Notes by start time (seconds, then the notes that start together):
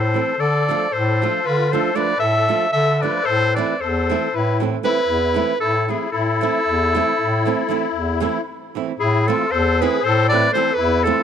Already playing: A2 A4 C5
0.14 E3 A3 C4 E4
0.38 D3 A4 D5
0.69 F3 A3 D4 F4
0.90 A4 C5
0.94 A2
1.22 F3 A3 D4 F4
1.44 D3 F4 B4
1.72 F3 A3 D4 F4 A4 C5
1.95 F3 A3 D4 F4 B4 D5
2.17 A2 A4 E5
2.48 F3 A3 D4 F4
2.72 D3 A4 E5
3.00 F3 A3 D4 B4 D5
3.05 F4
3.23 A2 A4 C5
3.52 B4
3.56 E3 A3 C4 E4 D5
3.80 E2 A4 C5
4.10 E3 A3 C4 E4
4.34 A2 E4 B4
4.60 E3 A3 C4 E4
4.83 E3 A3 C4 E4 B4
5.07 E2
5.34 E3 A3 C4 E4
5.60 A2 E4 A4
5.87 E3 A3 C4 E4 G#4
6.12 A2 E4 A4
6.41 E3 A3 C4 E4
6.67 E2
6.95 E3 A3 C4 E4
7.20 A2
7.45 E3 A3 C4 E4
7.69 E3 A3 C4 E4
7.93 E2
8.20 E3 A3 C4 E4
8.75 E3 A3 C4 E4
8.99 A2 E4 G#4
9.27 E3 A3 C4 E4 F4 A4
9.51 E2 A4 C5
9.81 E3 A3 C4 E4 G#4 B4
10.04 A2 A4 C5
10.29 E3 A3 C4 B4 D5
10.34 E4
10.53 E3 A3 C4 E4 A4 C5
10.74 E2 E4 B4
11.04 E3 A3 C4 E4 A4
11.08 F4